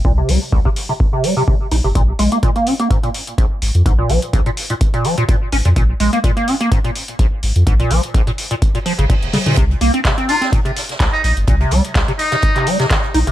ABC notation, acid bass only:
X:1
M:4/4
L:1/16
Q:"Swing 16ths" 1/4=126
K:Cphr
V:1 name="Acid bass" clef=bass
B,, C, G, z C,, C, z C, z C, G, C, C, z E C, | B,, z A, B, B,, B, D B, A,, B,, z2 B,,, z3 | A,, B,, F, z B,,, B,, z B,, z B,, F, B,, B,, z D B,, | B,, z A, B, B,, B, D B, A,, B,, z2 B,,, z3 |
A,, B,, F, z B,,, B,, z B,, z B,, F, D, B,, z D, B,, | C, z B, C C, C E C B,, C, z2 C,, z3 | B,, C, G, z C,, C, z C, z C, G, C, E, z E C, |]